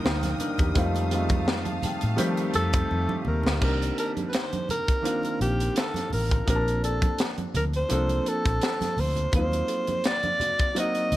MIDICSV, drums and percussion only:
0, 0, Header, 1, 2, 480
1, 0, Start_track
1, 0, Tempo, 714286
1, 507, Time_signature, 4, 2, 24, 8
1, 7504, End_track
2, 0, Start_track
2, 0, Title_t, "Drums"
2, 29, Note_on_c, 9, 62, 31
2, 38, Note_on_c, 9, 38, 117
2, 96, Note_off_c, 9, 62, 0
2, 105, Note_off_c, 9, 38, 0
2, 153, Note_on_c, 9, 62, 36
2, 153, Note_on_c, 9, 63, 81
2, 155, Note_on_c, 9, 42, 62
2, 159, Note_on_c, 9, 38, 32
2, 220, Note_off_c, 9, 62, 0
2, 220, Note_off_c, 9, 63, 0
2, 222, Note_off_c, 9, 42, 0
2, 227, Note_off_c, 9, 38, 0
2, 259, Note_on_c, 9, 64, 62
2, 267, Note_on_c, 9, 42, 65
2, 326, Note_off_c, 9, 64, 0
2, 335, Note_off_c, 9, 42, 0
2, 391, Note_on_c, 9, 64, 68
2, 396, Note_on_c, 9, 42, 50
2, 398, Note_on_c, 9, 36, 89
2, 458, Note_off_c, 9, 64, 0
2, 463, Note_off_c, 9, 42, 0
2, 465, Note_off_c, 9, 36, 0
2, 506, Note_on_c, 9, 42, 82
2, 507, Note_on_c, 9, 36, 93
2, 510, Note_on_c, 9, 62, 32
2, 573, Note_off_c, 9, 42, 0
2, 575, Note_off_c, 9, 36, 0
2, 577, Note_off_c, 9, 62, 0
2, 636, Note_on_c, 9, 62, 37
2, 642, Note_on_c, 9, 42, 55
2, 703, Note_off_c, 9, 62, 0
2, 710, Note_off_c, 9, 42, 0
2, 748, Note_on_c, 9, 42, 71
2, 815, Note_off_c, 9, 42, 0
2, 868, Note_on_c, 9, 42, 48
2, 872, Note_on_c, 9, 36, 88
2, 878, Note_on_c, 9, 63, 76
2, 936, Note_off_c, 9, 42, 0
2, 940, Note_off_c, 9, 36, 0
2, 945, Note_off_c, 9, 63, 0
2, 993, Note_on_c, 9, 38, 102
2, 1060, Note_off_c, 9, 38, 0
2, 1111, Note_on_c, 9, 42, 42
2, 1114, Note_on_c, 9, 62, 37
2, 1114, Note_on_c, 9, 63, 81
2, 1178, Note_off_c, 9, 42, 0
2, 1181, Note_off_c, 9, 62, 0
2, 1181, Note_off_c, 9, 63, 0
2, 1227, Note_on_c, 9, 63, 69
2, 1227, Note_on_c, 9, 64, 66
2, 1231, Note_on_c, 9, 42, 89
2, 1294, Note_off_c, 9, 63, 0
2, 1294, Note_off_c, 9, 64, 0
2, 1299, Note_off_c, 9, 42, 0
2, 1351, Note_on_c, 9, 42, 53
2, 1418, Note_off_c, 9, 42, 0
2, 1465, Note_on_c, 9, 42, 101
2, 1533, Note_off_c, 9, 42, 0
2, 1595, Note_on_c, 9, 42, 47
2, 1662, Note_off_c, 9, 42, 0
2, 1704, Note_on_c, 9, 42, 70
2, 1772, Note_off_c, 9, 42, 0
2, 1835, Note_on_c, 9, 42, 63
2, 1839, Note_on_c, 9, 36, 100
2, 1902, Note_off_c, 9, 42, 0
2, 1906, Note_off_c, 9, 36, 0
2, 1955, Note_on_c, 9, 62, 32
2, 2022, Note_off_c, 9, 62, 0
2, 2077, Note_on_c, 9, 62, 38
2, 2077, Note_on_c, 9, 63, 79
2, 2144, Note_off_c, 9, 62, 0
2, 2144, Note_off_c, 9, 63, 0
2, 2182, Note_on_c, 9, 64, 67
2, 2250, Note_off_c, 9, 64, 0
2, 2308, Note_on_c, 9, 64, 71
2, 2328, Note_on_c, 9, 38, 92
2, 2375, Note_off_c, 9, 64, 0
2, 2396, Note_off_c, 9, 38, 0
2, 2430, Note_on_c, 9, 49, 81
2, 2430, Note_on_c, 9, 62, 29
2, 2431, Note_on_c, 9, 36, 93
2, 2497, Note_off_c, 9, 49, 0
2, 2497, Note_off_c, 9, 62, 0
2, 2498, Note_off_c, 9, 36, 0
2, 2569, Note_on_c, 9, 42, 56
2, 2636, Note_off_c, 9, 42, 0
2, 2675, Note_on_c, 9, 42, 75
2, 2742, Note_off_c, 9, 42, 0
2, 2801, Note_on_c, 9, 42, 45
2, 2802, Note_on_c, 9, 63, 72
2, 2868, Note_off_c, 9, 42, 0
2, 2869, Note_off_c, 9, 63, 0
2, 2910, Note_on_c, 9, 42, 89
2, 2913, Note_on_c, 9, 62, 36
2, 2920, Note_on_c, 9, 38, 103
2, 2977, Note_off_c, 9, 42, 0
2, 2980, Note_off_c, 9, 62, 0
2, 2988, Note_off_c, 9, 38, 0
2, 3042, Note_on_c, 9, 42, 43
2, 3045, Note_on_c, 9, 62, 37
2, 3045, Note_on_c, 9, 63, 82
2, 3109, Note_off_c, 9, 42, 0
2, 3112, Note_off_c, 9, 62, 0
2, 3112, Note_off_c, 9, 63, 0
2, 3152, Note_on_c, 9, 63, 62
2, 3152, Note_on_c, 9, 64, 68
2, 3159, Note_on_c, 9, 42, 81
2, 3219, Note_off_c, 9, 63, 0
2, 3219, Note_off_c, 9, 64, 0
2, 3226, Note_off_c, 9, 42, 0
2, 3282, Note_on_c, 9, 36, 79
2, 3282, Note_on_c, 9, 42, 49
2, 3349, Note_off_c, 9, 36, 0
2, 3349, Note_off_c, 9, 42, 0
2, 3389, Note_on_c, 9, 62, 32
2, 3396, Note_on_c, 9, 42, 92
2, 3457, Note_off_c, 9, 62, 0
2, 3464, Note_off_c, 9, 42, 0
2, 3516, Note_on_c, 9, 62, 31
2, 3526, Note_on_c, 9, 42, 41
2, 3583, Note_off_c, 9, 62, 0
2, 3593, Note_off_c, 9, 42, 0
2, 3637, Note_on_c, 9, 42, 62
2, 3704, Note_off_c, 9, 42, 0
2, 3766, Note_on_c, 9, 42, 59
2, 3833, Note_off_c, 9, 42, 0
2, 3870, Note_on_c, 9, 42, 93
2, 3882, Note_on_c, 9, 38, 107
2, 3937, Note_off_c, 9, 42, 0
2, 3949, Note_off_c, 9, 38, 0
2, 3993, Note_on_c, 9, 62, 35
2, 3993, Note_on_c, 9, 63, 78
2, 4006, Note_on_c, 9, 42, 59
2, 4010, Note_on_c, 9, 38, 33
2, 4061, Note_off_c, 9, 62, 0
2, 4061, Note_off_c, 9, 63, 0
2, 4073, Note_off_c, 9, 42, 0
2, 4077, Note_off_c, 9, 38, 0
2, 4101, Note_on_c, 9, 63, 46
2, 4101, Note_on_c, 9, 64, 60
2, 4117, Note_on_c, 9, 46, 65
2, 4168, Note_off_c, 9, 63, 0
2, 4168, Note_off_c, 9, 64, 0
2, 4184, Note_off_c, 9, 46, 0
2, 4229, Note_on_c, 9, 64, 65
2, 4243, Note_on_c, 9, 36, 86
2, 4245, Note_on_c, 9, 42, 46
2, 4296, Note_off_c, 9, 64, 0
2, 4310, Note_off_c, 9, 36, 0
2, 4313, Note_off_c, 9, 42, 0
2, 4348, Note_on_c, 9, 62, 30
2, 4352, Note_on_c, 9, 36, 88
2, 4355, Note_on_c, 9, 42, 79
2, 4415, Note_off_c, 9, 62, 0
2, 4419, Note_off_c, 9, 36, 0
2, 4422, Note_off_c, 9, 42, 0
2, 4488, Note_on_c, 9, 42, 53
2, 4555, Note_off_c, 9, 42, 0
2, 4596, Note_on_c, 9, 42, 69
2, 4663, Note_off_c, 9, 42, 0
2, 4717, Note_on_c, 9, 36, 87
2, 4719, Note_on_c, 9, 42, 50
2, 4720, Note_on_c, 9, 63, 76
2, 4784, Note_off_c, 9, 36, 0
2, 4786, Note_off_c, 9, 42, 0
2, 4788, Note_off_c, 9, 63, 0
2, 4828, Note_on_c, 9, 42, 91
2, 4828, Note_on_c, 9, 62, 33
2, 4839, Note_on_c, 9, 38, 106
2, 4895, Note_off_c, 9, 62, 0
2, 4896, Note_off_c, 9, 42, 0
2, 4906, Note_off_c, 9, 38, 0
2, 4957, Note_on_c, 9, 42, 41
2, 4960, Note_on_c, 9, 62, 36
2, 4960, Note_on_c, 9, 63, 75
2, 5025, Note_off_c, 9, 42, 0
2, 5027, Note_off_c, 9, 62, 0
2, 5027, Note_off_c, 9, 63, 0
2, 5070, Note_on_c, 9, 63, 68
2, 5070, Note_on_c, 9, 64, 63
2, 5072, Note_on_c, 9, 42, 83
2, 5137, Note_off_c, 9, 63, 0
2, 5137, Note_off_c, 9, 64, 0
2, 5140, Note_off_c, 9, 42, 0
2, 5198, Note_on_c, 9, 42, 49
2, 5265, Note_off_c, 9, 42, 0
2, 5304, Note_on_c, 9, 62, 33
2, 5307, Note_on_c, 9, 42, 92
2, 5372, Note_off_c, 9, 62, 0
2, 5374, Note_off_c, 9, 42, 0
2, 5439, Note_on_c, 9, 42, 45
2, 5439, Note_on_c, 9, 62, 32
2, 5506, Note_off_c, 9, 42, 0
2, 5506, Note_off_c, 9, 62, 0
2, 5553, Note_on_c, 9, 42, 65
2, 5620, Note_off_c, 9, 42, 0
2, 5682, Note_on_c, 9, 36, 103
2, 5684, Note_on_c, 9, 42, 56
2, 5749, Note_off_c, 9, 36, 0
2, 5751, Note_off_c, 9, 42, 0
2, 5789, Note_on_c, 9, 42, 92
2, 5801, Note_on_c, 9, 38, 116
2, 5856, Note_off_c, 9, 42, 0
2, 5868, Note_off_c, 9, 38, 0
2, 5920, Note_on_c, 9, 62, 35
2, 5920, Note_on_c, 9, 63, 78
2, 5925, Note_on_c, 9, 42, 63
2, 5930, Note_on_c, 9, 38, 32
2, 5987, Note_off_c, 9, 62, 0
2, 5987, Note_off_c, 9, 63, 0
2, 5992, Note_off_c, 9, 42, 0
2, 5997, Note_off_c, 9, 38, 0
2, 6026, Note_on_c, 9, 63, 45
2, 6026, Note_on_c, 9, 64, 62
2, 6033, Note_on_c, 9, 46, 64
2, 6093, Note_off_c, 9, 63, 0
2, 6093, Note_off_c, 9, 64, 0
2, 6101, Note_off_c, 9, 46, 0
2, 6157, Note_on_c, 9, 64, 65
2, 6160, Note_on_c, 9, 42, 44
2, 6224, Note_off_c, 9, 64, 0
2, 6227, Note_off_c, 9, 42, 0
2, 6269, Note_on_c, 9, 36, 97
2, 6269, Note_on_c, 9, 42, 84
2, 6274, Note_on_c, 9, 62, 31
2, 6336, Note_off_c, 9, 36, 0
2, 6336, Note_off_c, 9, 42, 0
2, 6341, Note_off_c, 9, 62, 0
2, 6397, Note_on_c, 9, 62, 35
2, 6406, Note_on_c, 9, 42, 59
2, 6464, Note_off_c, 9, 62, 0
2, 6473, Note_off_c, 9, 42, 0
2, 6507, Note_on_c, 9, 42, 73
2, 6574, Note_off_c, 9, 42, 0
2, 6635, Note_on_c, 9, 42, 49
2, 6642, Note_on_c, 9, 63, 75
2, 6702, Note_off_c, 9, 42, 0
2, 6709, Note_off_c, 9, 63, 0
2, 6747, Note_on_c, 9, 42, 82
2, 6757, Note_on_c, 9, 38, 107
2, 6814, Note_off_c, 9, 42, 0
2, 6824, Note_off_c, 9, 38, 0
2, 6874, Note_on_c, 9, 42, 42
2, 6879, Note_on_c, 9, 62, 35
2, 6879, Note_on_c, 9, 63, 84
2, 6941, Note_off_c, 9, 42, 0
2, 6946, Note_off_c, 9, 62, 0
2, 6946, Note_off_c, 9, 63, 0
2, 6987, Note_on_c, 9, 63, 68
2, 6987, Note_on_c, 9, 64, 71
2, 6996, Note_on_c, 9, 42, 82
2, 7055, Note_off_c, 9, 63, 0
2, 7055, Note_off_c, 9, 64, 0
2, 7063, Note_off_c, 9, 42, 0
2, 7116, Note_on_c, 9, 42, 49
2, 7120, Note_on_c, 9, 36, 83
2, 7184, Note_off_c, 9, 42, 0
2, 7187, Note_off_c, 9, 36, 0
2, 7229, Note_on_c, 9, 62, 34
2, 7233, Note_on_c, 9, 42, 90
2, 7296, Note_off_c, 9, 62, 0
2, 7300, Note_off_c, 9, 42, 0
2, 7357, Note_on_c, 9, 42, 44
2, 7424, Note_off_c, 9, 42, 0
2, 7472, Note_on_c, 9, 42, 69
2, 7504, Note_off_c, 9, 42, 0
2, 7504, End_track
0, 0, End_of_file